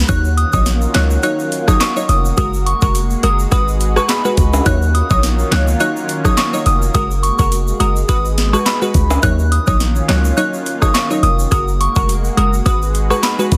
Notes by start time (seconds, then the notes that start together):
0.08 D#2 D#3 F#3 A#3 C#4 D#4 F4 F#4 C#5 F#6, kick, closed hi-hat, shaker
0.25 shaker
0.37 D#6, closed hi-hat
0.53 A#1 F#3 D#4 C#5 D#6, kick, shaker
0.66 snare, closed hi-hat, shaker
0.81 shaker
0.94 C#2 F#3 D#4 C#5 F#6, snare, clap, closed hi-hat
1.10 shaker
1.23 F#3 D#4 C#5 F#6, closed hi-hat, shaker
1.39 shaker
1.52 closed hi-hat, shaker
1.68 F#3 D#4 C#5 D#6, kick, cross-stick, shaker
1.80 C#6, snare, clap, closed hi-hat, shaker
1.96 F#3 D#4 C#5, shaker
2.09 F1 D#6, closed hi-hat, shaker
2.25 shaker
2.37 F#1 G#3 F#4 A#4 D#6, kick, closed hi-hat, shaker
2.54 shaker
2.66 C#6, closed hi-hat
2.81 F1 G#3 F#4 A#4 C#6, kick, shaker
2.95 closed hi-hat, shaker
3.10 shaker
3.23 F#1 G#3 F#4 A#4 D#6, closed hi-hat
3.39 shaker
3.51 G#1 G#3 D#4 F#4 G#4 B4 D#6, kick, closed hi-hat, shaker
3.68 shaker
3.81 closed hi-hat, shaker
3.96 G#3 F#4 B4 C#6, cross-stick, shaker
4.09 B5, snare, clap, closed hi-hat, shaker
4.25 G#3 F#4 B4, shaker
4.37 C#2, kick, closed hi-hat, shaker
4.54 high timbale, shaker
4.66 D#2 D#3 F#3 A#3 C#4 D#4 F4 C#5 F#6, kick, closed hi-hat, shaker
4.82 shaker
4.95 D#6, closed hi-hat
5.10 A#1 F#3 D#4 C#5 D#6, kick, shaker
5.23 snare, closed hi-hat, shaker
5.39 shaker
5.51 C#2 F#3 D#4 C#5 F#6, snare, clap, closed hi-hat
5.68 shaker
5.80 F#3 D#4 C#5 F#6, closed hi-hat, shaker
5.97 shaker
6.09 closed hi-hat, shaker
6.24 F#3 D#4 C#5 D#6, kick, cross-stick, shaker
6.37 C#6, snare, clap, closed hi-hat, shaker
6.53 F#3 D#4 C#5, shaker
6.66 F1 D#6, closed hi-hat, shaker
6.82 shaker
6.94 F#1 G#3 F#4 A#4 D#6, kick, closed hi-hat, shaker
7.11 shaker
7.23 C#6, closed hi-hat, shaker
7.39 F1 G#3 F#4 A#4 C#6, kick, shaker
7.52 closed hi-hat, shaker
7.68 shaker
7.80 F#1 G#3 F#4 A#4 D#6, closed hi-hat, shaker
7.96 shaker
8.08 G#1 G#3 D#4 F#4 G#4 B4 D#6, kick, closed hi-hat, shaker
8.25 shaker
8.38 snare, closed hi-hat
8.53 G#3 F#4 B4 C#6, cross-stick, shaker
8.66 B5, snare, clap, closed hi-hat, shaker
8.82 G#3 F#4 B4, shaker
8.94 C#2, kick, closed hi-hat, shaker
9.11 high timbale, shaker
9.23 D#2 D#3 F#3 A#3 C#4 D#4 F4 C#5 F#6, kick, closed hi-hat, shaker
9.39 shaker
9.52 D#6, closed hi-hat
9.67 A#1 F#3 D#4 C#5 D#6, kick, shaker
9.80 snare, closed hi-hat, shaker
9.96 shaker
10.08 C#2 F#3 D#4 C#5 F#6, snare, clap, closed hi-hat
10.25 shaker
10.37 F#3 D#4 C#5 F#6, closed hi-hat, shaker
10.54 shaker
10.66 closed hi-hat, shaker
10.81 F#3 D#4 C#5 D#6, kick, cross-stick, shaker
10.94 C#6, snare, clap, closed hi-hat, shaker
11.10 F#3 D#4 C#5, shaker
11.23 F1 D#6, closed hi-hat, shaker
11.39 shaker
11.51 F#1 G#3 A#3 F#4 A#4 D#6, kick, closed hi-hat, shaker
11.68 shaker
11.81 C#6, closed hi-hat
11.96 F1 G#3 F#4 A#4 C#6, kick, shaker
12.09 closed hi-hat, shaker
12.24 shaker
12.37 F#1 G#3 F#4 A#4 D#6, closed hi-hat
12.53 shaker
12.65 G#1 G#3 D#4 F#4 G#4 B4 D#6, kick, closed hi-hat, shaker
12.82 shaker
12.95 closed hi-hat, shaker
13.10 G#3 F#4 B4 C#6, cross-stick, shaker
13.23 B5, snare, clap, closed hi-hat, shaker
13.39 G#3 F#4 B4, shaker
13.52 C#2, kick, closed hi-hat, shaker